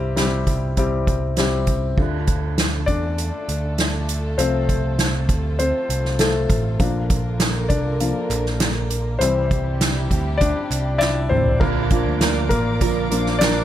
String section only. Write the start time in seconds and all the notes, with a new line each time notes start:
1.97 D3 A3 F4 A4
4.40 C3
6.79 D3 A#3 A#4
9.20 C3 G3 E4 G4
11.61 A#4 D5 F5 D6